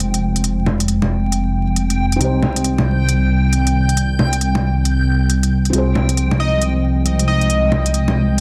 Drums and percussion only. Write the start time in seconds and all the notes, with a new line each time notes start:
0.00 closed hi-hat
0.14 closed hi-hat
0.36 closed hi-hat
0.44 closed hi-hat
0.66 low bongo
0.80 closed hi-hat
0.88 closed hi-hat
1.02 low bongo
1.32 closed hi-hat
1.76 closed hi-hat
1.90 closed hi-hat
2.12 closed hi-hat
2.21 closed hi-hat
2.43 low bongo
2.56 closed hi-hat
2.64 closed hi-hat
2.78 low bongo
3.09 closed hi-hat
3.53 closed hi-hat
3.67 closed hi-hat
3.89 closed hi-hat
3.97 closed hi-hat
4.19 low bongo
4.33 closed hi-hat
4.41 closed hi-hat
4.55 low bongo
4.85 closed hi-hat
5.30 closed hi-hat
5.43 closed hi-hat
5.65 closed hi-hat
5.73 closed hi-hat
5.95 low bongo
6.09 closed hi-hat
6.17 closed hi-hat
6.31 low bongo
6.62 closed hi-hat
7.06 closed hi-hat
7.19 closed hi-hat
7.41 closed hi-hat
7.50 closed hi-hat
7.72 low bongo
7.86 closed hi-hat
7.94 closed hi-hat
8.08 low bongo